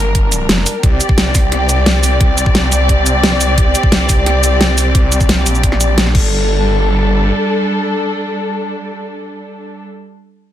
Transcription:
0.00 0.48 G1 loud
0.00 0.79 G3 medium
0.00 0.79 D4 medium
0.00 0.81 A#4 loud
0.15 kick medium
0.15 closed hi-hat medium
0.32 closed hi-hat medium
0.32 shaker medium
0.49 0.65 F1 loud
0.49 snare loud
0.49 closed hi-hat medium
0.58 snare soft
0.66 open hi-hat medium
0.66 shaker medium
0.83 0.99 C2 loud
0.83 6.11 C4 medium
0.83 6.11 G4 medium
0.83 6.11 D5 loud
0.83 kick loud
0.83 closed hi-hat medium
1.01 closed hi-hat medium
1.01 shaker medium
1.09 kick loud
1.18 1.33 C2 loud
1.18 snare loud
1.18 closed hi-hat medium
1.35 2.19 C2 loud
1.35 kick loud
1.35 snare soft
1.35 open hi-hat medium
1.35 shaker medium
1.52 snare soft
1.52 closed hi-hat medium
1.69 closed hi-hat medium
1.69 shaker medium
1.86 snare loud
1.86 closed hi-hat medium
2.03 open hi-hat medium
2.03 shaker medium
2.21 2.71 C2 loud
2.21 kick loud
2.21 closed hi-hat medium
2.38 closed hi-hat medium
2.38 shaker medium
2.46 kick loud
2.55 snare loud
2.55 closed hi-hat medium
2.72 3.56 C2 loud
2.72 open hi-hat medium
2.72 shaker medium
2.89 kick medium
2.89 closed hi-hat medium
3.06 closed hi-hat medium
3.06 shaker medium
3.23 snare loud
3.23 closed hi-hat medium
3.32 snare soft
3.41 open hi-hat medium
3.41 shaker medium
3.58 3.74 C2 loud
3.58 kick loud
3.58 closed hi-hat medium
3.75 closed hi-hat loud
3.75 shaker medium
3.83 kick loud
3.92 4.08 C2 loud
3.92 snare loud
3.92 closed hi-hat medium
4.09 4.94 C2 loud
4.09 kick loud
4.09 snare soft
4.09 open hi-hat medium
4.09 shaker medium
4.26 snare soft
4.26 closed hi-hat medium
4.44 closed hi-hat loud
4.44 shaker medium
4.61 snare loud
4.61 closed hi-hat medium
4.78 open hi-hat medium
4.78 shaker medium
4.95 5.45 C2 loud
4.95 kick loud
4.95 closed hi-hat medium
5.12 closed hi-hat loud
5.12 shaker medium
5.21 kick loud
5.21 shaker soft
5.29 snare loud
5.29 closed hi-hat medium
5.46 5.62 A#1 loud
5.46 open hi-hat medium
5.46 shaker medium
5.55 shaker soft
5.63 6.14 A#1 loud
5.63 kick medium
5.63 closed hi-hat medium
5.72 snare medium
5.81 closed hi-hat loud
5.81 shaker medium
5.98 snare loud
5.98 closed hi-hat medium
6.06 snare soft
6.15 7.31 G1 loud
6.15 9.82 G3 medium
6.15 9.82 D4 medium
6.15 9.82 A4 loud
6.15 kick loud
6.15 crash medium

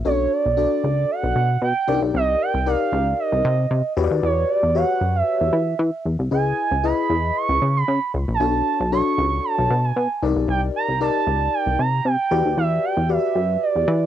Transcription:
0.05 0.27 B1 loud
0.05 0.12 C#4 medium
0.05 0.45 F#4 medium
0.05 0.45 A4 medium
0.05 0.45 C#5 medium
0.05 0.34 C#5 loud
0.11 0.48 D4 medium
0.32 1.12 D5 loud
0.46 0.67 B1 medium
0.57 1.35 D4 medium
0.57 1.35 F#4 medium
0.57 1.36 A4 medium
0.57 1.36 D5 medium
0.84 1.05 C#2 loud
1.11 1.62 F#5 loud
1.23 1.34 B1 loud
1.36 1.57 B2 loud
1.62 1.73 B2 loud
1.62 2.00 G5 loud
1.88 1.99 C2 loud
1.88 1.94 D4 medium
1.88 2.51 G4 medium
1.88 2.51 A#4 medium
1.88 2.51 D5 medium
1.94 2.54 D#4 medium
2.02 2.12 B1 loud
2.14 2.36 C2 loud
2.14 2.43 D#5 loud
2.42 2.69 G5 loud
2.54 2.76 C2 medium
2.66 3.44 D#4 medium
2.66 3.44 G4 medium
2.66 3.44 A#4 medium
2.66 3.44 D5 medium
2.66 3.19 F5 medium
2.92 3.14 C#2 loud
3.19 3.93 D#5 medium
3.32 3.42 C2 medium
3.45 3.66 C3 loud
3.71 3.82 C3 loud
3.97 4.08 E2 loud
3.97 4.60 F#4 medium
3.97 4.60 G4 medium
3.97 4.60 B4 medium
3.97 4.04 C#5 medium
4.04 4.63 D5 loud
4.11 4.21 D#2 loud
4.23 4.45 E2 loud
4.23 4.51 C#5 loud
4.49 4.77 D5 loud
4.63 4.85 E2 medium
4.75 5.53 F#4 medium
4.75 5.53 G4 medium
4.75 5.53 B4 medium
4.75 5.53 C#5 medium
4.75 5.17 F#5 loud
5.01 5.23 F#2 medium
5.16 6.06 E5 loud
5.41 5.51 E2 medium
5.53 5.75 E3 loud
5.79 5.91 E3 loud
6.05 6.17 E2 loud
6.19 6.29 C2 loud
6.31 6.53 C#2 medium
6.31 6.71 E4 medium
6.31 6.71 G#4 medium
6.31 6.71 B4 medium
6.31 6.71 D#5 medium
6.31 6.86 G#5 medium
6.71 6.93 C#2 medium
6.83 7.61 E4 medium
6.83 7.62 G#4 medium
6.83 7.62 B4 medium
6.83 7.62 D#5 medium
6.83 7.38 B5 loud
7.10 7.31 E2 loud
7.37 7.76 C#6 loud
7.49 7.59 C#2 loud
7.62 7.84 C#3 loud
7.77 8.12 B5 medium
7.88 7.99 C#3 loud
8.14 8.26 C#2 medium
8.28 8.38 A#1 loud
8.34 8.42 G#5 medium
8.40 8.62 B1 loud
8.40 8.80 D4 medium
8.40 8.80 F#4 medium
8.40 8.80 A4 medium
8.40 8.80 C#5 medium
8.40 8.91 A5 loud
8.80 9.02 B1 loud
8.92 9.70 D4 medium
8.92 9.70 F#4 medium
8.92 9.70 A4 medium
8.92 9.70 C#5 medium
8.92 9.46 C#6 loud
9.18 9.40 C#2 loud
9.44 9.86 A5 loud
9.58 9.68 B1 loud
9.70 9.92 B2 loud
9.84 10.23 G#5 medium
9.96 10.08 B2 loud
10.22 10.34 C2 loud
10.22 10.86 D#4 medium
10.22 10.86 G4 medium
10.22 10.86 A#4 medium
10.22 10.86 D5 medium
10.36 10.47 B1 loud
10.48 10.70 C2 loud
10.48 10.61 G5 loud
10.76 11.00 A#5 loud
10.88 11.10 C2 medium
11.01 11.79 D#4 medium
11.01 11.79 G4 medium
11.01 11.79 A#4 medium
11.01 11.79 D5 medium
11.01 11.55 A5 loud
11.27 11.49 C#2 loud
11.54 11.81 G5 loud
11.66 11.77 C2 medium
11.79 12.01 C3 medium
11.79 12.07 A#5 loud
12.05 12.17 C3 loud
12.05 12.58 G5 loud
12.31 12.43 E2 loud
12.31 12.95 F#4 medium
12.31 12.95 G4 medium
12.31 12.95 B4 medium
12.31 12.95 D5 medium
12.45 12.55 D#2 medium
12.57 12.79 E2 loud
12.57 12.86 E5 loud
12.85 13.11 G5 medium
12.97 13.19 E2 medium
13.09 13.87 F#4 medium
13.09 13.87 G4 medium
13.09 13.88 B4 medium
13.09 13.88 D5 medium
13.09 13.62 E5 medium
13.35 13.57 F#2 medium
13.63 14.06 D5 medium
13.76 13.86 E2 medium
13.88 14.06 E3 loud

